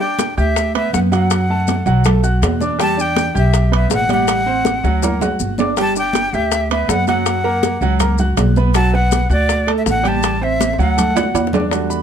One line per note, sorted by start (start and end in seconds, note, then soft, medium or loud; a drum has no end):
0.00 0.31 D4 medium
0.00 0.32 D5 medium
0.00 0.35 G5 medium
0.00 0.32 D6 medium
0.00 high bongo soft
0.00 high conga soft
0.19 high bongo medium
0.19 high conga medium
0.19 high timbale medium
0.19 maracas medium
0.37 0.90 D2 loud
0.37 0.68 G4 medium
0.37 0.73 E5 loud
0.37 0.68 G5 medium
0.37 0.68 G6 medium
0.37 high bongo soft
0.37 high conga soft
0.37 maracas soft
0.56 high bongo medium
0.56 high conga soft
0.56 high timbale medium
0.56 maracas medium
0.75 1.06 B3 medium
0.75 1.06 B4 medium
0.75 0.93 E5 medium
0.75 1.06 B5 medium
0.75 high conga soft
0.75 high timbale medium
0.93 1.81 F#2 medium
0.93 1.00 F#5 loud
0.93 high bongo medium
0.93 low bongo medium
0.93 high conga medium
0.93 maracas medium
1.12 1.43 F#3 medium
1.12 1.43 F#4 medium
1.12 1.43 F#5 medium
1.12 2.21 F#5 medium
1.12 high bongo soft
1.12 high conga medium
1.12 high timbale medium
1.12 maracas soft
1.30 high bongo medium
1.30 high conga soft
1.30 high timbale medium
1.30 maracas medium
1.50 1.80 A3 medium
1.50 1.81 A4 medium
1.50 1.81 A5 medium
1.50 high conga soft
1.68 high bongo medium
1.68 high conga medium
1.68 high timbale medium
1.68 maracas medium
1.86 2.38 B1 loud
1.86 2.02 F#3 medium
1.86 2.02 F#4 medium
1.86 2.02 F#5 medium
1.86 high bongo soft
1.86 maracas soft
2.04 2.21 A3 medium
2.04 2.21 A4 medium
2.04 2.21 A5 medium
2.04 high bongo medium
2.04 high conga soft
2.04 low conga medium
2.04 high timbale medium
2.04 maracas medium
2.23 2.54 F#4 medium
2.23 2.54 F#5 medium
2.23 2.54 F#6 medium
2.23 high bongo soft
2.23 high conga soft
2.23 maracas medium
2.42 3.29 E2 medium
2.42 high bongo medium
2.42 low bongo medium
2.42 high conga medium
2.42 high timbale medium
2.42 low timbale medium
2.42 maracas medium
2.60 2.77 D4 medium
2.60 2.76 D5 medium
2.60 2.77 D6 medium
2.60 high bongo soft
2.60 high conga medium
2.60 maracas soft
2.79 2.94 G3 medium
2.79 2.95 G4 medium
2.79 2.95 G5 medium
2.79 3.02 A5 loud
2.79 high bongo medium
2.79 high conga soft
2.79 high timbale medium
2.79 maracas medium
2.97 3.28 D4 medium
2.97 3.29 D5 medium
2.97 3.37 G5 loud
2.97 3.29 D6 medium
2.97 high bongo soft
2.97 high conga soft
2.97 maracas medium
3.16 high bongo medium
3.16 high conga medium
3.16 high timbale medium
3.16 maracas medium
3.35 3.87 B1 loud
3.35 3.66 G4 medium
3.35 3.72 E5 medium
3.35 3.66 G5 medium
3.35 3.66 G6 medium
3.35 high bongo soft
3.35 high conga soft
3.35 maracas soft
3.54 high bongo medium
3.54 high conga soft
3.54 high timbale medium
3.54 maracas medium
3.72 4.03 B3 medium
3.72 4.03 B4 medium
3.72 4.03 B5 medium
3.72 high conga soft
3.72 high timbale loud
3.76 3.92 E5 medium
3.90 4.78 A1 medium
3.90 4.10 F#5 loud
3.90 high bongo medium
3.90 low bongo medium
3.90 high conga medium
3.90 low timbale medium
3.90 maracas medium
4.09 4.40 G3 medium
4.09 4.40 G4 medium
4.09 4.41 F#5 medium
4.09 5.19 F#5 loud
4.09 high bongo soft
4.09 high conga medium
4.09 high timbale medium
4.09 maracas soft
4.28 high bongo medium
4.28 high conga soft
4.28 high timbale loud
4.28 maracas medium
4.46 4.77 C4 medium
4.46 4.78 C5 medium
4.46 4.78 C6 medium
4.46 high conga soft
4.65 high bongo medium
4.65 high conga loud
4.65 high timbale medium
4.65 maracas medium
4.83 5.36 D2 medium
4.83 5.00 F#3 medium
4.83 5.00 F#4 medium
4.83 5.00 F#5 medium
4.83 high bongo medium
4.83 maracas soft
5.02 5.18 A#3 medium
5.02 5.18 A#4 medium
5.02 5.18 A#5 medium
5.02 high bongo medium
5.02 high conga soft
5.02 low conga medium
5.02 high timbale medium
5.02 maracas medium
5.21 5.52 F#4 medium
5.21 5.52 F#5 medium
5.21 5.52 F#6 medium
5.21 high bongo loud
5.21 high conga soft
5.21 low conga medium
5.21 low timbale medium
5.21 maracas medium
5.40 6.27 G1 medium
5.40 high conga medium
5.40 maracas medium
5.58 5.74 D4 medium
5.58 5.74 D5 medium
5.58 5.74 D6 medium
5.58 low bongo medium
5.58 high conga medium
5.58 low timbale medium
5.58 maracas soft
5.77 5.93 G3 medium
5.77 5.93 G4 medium
5.77 5.93 G5 medium
5.77 high bongo medium
5.77 high conga soft
5.77 high timbale medium
5.77 maracas medium
5.81 5.97 A5 loud
5.95 6.27 D4 medium
5.95 6.27 D5 medium
5.95 6.36 G5 loud
5.95 6.27 D6 medium
5.95 high bongo soft
5.95 high conga soft
5.95 maracas medium
6.13 high bongo medium
6.13 high conga medium
6.13 high timbale medium
6.13 maracas medium
6.33 6.85 D2 medium
6.33 6.64 G4 medium
6.33 6.71 E5 loud
6.33 6.65 G5 medium
6.33 6.65 G6 medium
6.33 high bongo soft
6.33 high conga soft
6.33 maracas soft
6.52 high bongo medium
6.52 high conga soft
6.52 high timbale medium
6.52 maracas medium
6.70 7.01 B3 medium
6.70 7.01 B4 medium
6.70 6.90 E5 medium
6.70 7.01 B5 medium
6.70 high conga soft
6.70 high timbale loud
6.88 7.76 F#2 medium
6.88 7.07 F#5 loud
6.88 high bongo medium
6.88 low bongo medium
6.88 high conga medium
6.88 low timbale medium
6.88 maracas medium
7.07 7.38 F#3 medium
7.07 7.38 F#4 medium
7.07 7.39 F#5 medium
7.07 8.16 F#5 medium
7.07 high bongo soft
7.07 high conga medium
7.07 high timbale medium
7.07 maracas soft
7.26 high bongo medium
7.26 high conga soft
7.26 high timbale medium
7.26 maracas medium
7.44 7.75 A#3 medium
7.44 7.75 A#4 medium
7.44 7.75 A#5 medium
7.44 high conga soft
7.63 high bongo medium
7.63 high conga loud
7.63 high timbale medium
7.63 maracas medium
7.81 8.33 C#2 loud
7.81 7.97 F#3 loud
7.81 7.98 F#4 medium
7.81 7.98 F#5 medium
7.81 high bongo soft
7.81 maracas soft
8.00 8.16 A#3 medium
8.00 8.16 A#4 medium
8.00 8.16 A#5 medium
8.00 high bongo medium
8.00 high conga soft
8.00 low conga medium
8.00 high timbale medium
8.00 maracas medium
8.18 8.50 F#4 medium
8.18 8.50 F#5 medium
8.18 8.50 F#6 medium
8.18 high bongo soft
8.18 high conga soft
8.18 low conga medium
8.18 maracas medium
8.37 9.25 B1 medium
8.37 high bongo medium
8.37 low bongo medium
8.37 high conga medium
8.37 high timbale medium
8.37 low timbale medium
8.37 maracas medium
8.56 8.72 B3 medium
8.56 8.72 B4 medium
8.56 8.72 B5 medium
8.56 high bongo soft
8.56 high conga medium
8.56 maracas soft
8.74 8.90 F#3 medium
8.74 8.90 F#4 medium
8.74 8.90 F#5 medium
8.74 8.96 A5 loud
8.74 high bongo medium
8.74 high timbale medium
8.74 maracas medium
8.93 9.24 B3 medium
8.93 9.24 B4 medium
8.93 9.31 F#5 loud
8.93 9.24 B5 medium
8.93 high bongo soft
8.93 high conga soft
9.12 high bongo medium
9.12 high conga medium
9.12 high timbale medium
9.12 maracas medium
9.29 9.82 D2 loud
9.29 9.61 F#4 medium
9.29 9.72 D5 loud
9.29 9.61 F#5 medium
9.29 9.61 F#6 medium
9.29 high bongo soft
9.29 high conga soft
9.29 maracas soft
9.49 high bongo medium
9.49 high conga soft
9.49 high timbale medium
9.49 maracas medium
9.67 9.98 A3 medium
9.67 9.98 A4 medium
9.67 9.98 A5 medium
9.67 high conga soft
9.67 high timbale medium
9.78 9.83 E5 medium
9.86 10.73 A1 medium
9.86 10.10 F#5 loud
9.86 high bongo medium
9.86 low bongo medium
9.86 high conga medium
9.86 maracas medium
10.03 10.34 G3 medium
10.03 10.35 G4 medium
10.03 10.35 G5 medium
10.03 high bongo soft
10.03 high conga medium
10.03 high timbale medium
10.03 maracas soft
10.08 10.45 A5 loud
10.23 high bongo medium
10.23 high timbale medium
10.23 maracas medium
10.41 10.72 C4 medium
10.41 10.72 C5 medium
10.41 10.80 E5 loud
10.41 10.72 C6 medium
10.41 high conga soft
10.60 high bongo loud
10.60 high conga medium
10.60 high timbale medium
10.60 maracas medium
10.73 high bongo medium
10.78 11.31 D2 loud
10.78 10.94 F#3 medium
10.78 10.94 F#4 medium
10.78 10.95 F#5 medium
10.78 11.50 F#5 medium
10.78 maracas soft
10.97 11.12 A3 medium
10.97 11.12 A4 medium
10.97 11.13 A5 medium
10.97 low bongo loud
10.97 high conga soft
10.97 low conga medium
10.97 high timbale medium
10.97 maracas medium
11.10 low bongo medium
11.15 11.46 F#4 medium
11.15 11.46 F#5 medium
11.15 11.47 F#6 medium
11.15 high conga loud
11.15 high timbale medium
11.15 maracas medium
11.23 low bongo loud
11.34 12.03 E2 medium
11.34 high conga medium
11.34 high timbale loud
11.34 maracas medium
11.47 low bongo medium
11.53 11.69 D4 medium
11.53 11.69 D5 medium
11.53 11.69 D6 medium
11.53 low conga loud
11.53 low timbale loud
11.53 maracas soft
11.60 low bongo loud
11.71 11.96 G3 medium
11.71 11.97 A3 soft
11.71 11.97 D4 soft
11.71 11.97 F#4 medium
11.71 high bongo medium
11.71 high conga soft
11.71 high timbale medium
11.71 maracas medium
11.90 12.03 B5 medium
11.90 high bongo soft
11.90 high conga soft
11.90 maracas medium